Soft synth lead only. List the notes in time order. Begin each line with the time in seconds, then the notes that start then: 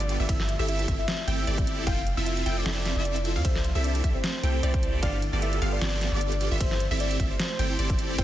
Already playing: D5
0.29 E5
0.68 E5
0.99 E5
1.87 F5
2.26 E5
2.57 D5
3.45 C5
3.84 D5
4.15 C5
5.03 D5
5.42 E5
5.73 D5
6.61 C5
7.00 D5
7.31 C5
8.18 C5